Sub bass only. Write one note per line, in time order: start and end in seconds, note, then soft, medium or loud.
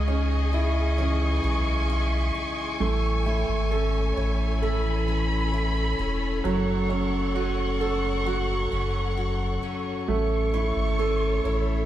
0.00 1.40 C#2 loud
1.44 2.31 B1 medium
2.80 3.45 A1 loud
3.49 4.13 G#1 medium
4.17 5.95 A1 loud
5.99 6.41 E1 medium
6.45 8.68 F#1 loud
8.72 9.59 F#1 loud
10.08 10.72 A1 loud
10.76 11.41 G#1 medium
11.45 11.86 A1 loud